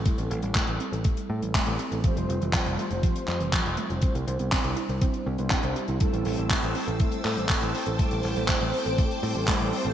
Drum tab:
HH |xxxxxxxxxx-xxxxx|xxxxxxxxxx-xxxxx|xxxxxxxxxx-xxxxx|xxoxxxoxxxoxxxox|
CP |----x-------x---|----x-----x-x---|----x-------x---|----x-----x-x---|
BD |o---o---o---o---|o---o---o---o---|o---o---o---o---|o---o---o---o---|

HH |xxoxxxoxxxoxxxox|
CP |----x-------x---|
BD |o---o---o---o---|